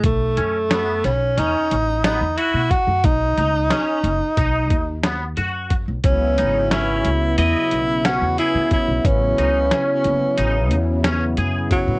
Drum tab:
HH |xxxxxxxxx|xxxxxxxxx|xxxxxxxxx|xxxxxxxxx|
SD |--oo--o--|--o---o--|--o---o--|--o---o--|
BD |o-------o|o---oo--o|o-------o|o-------o|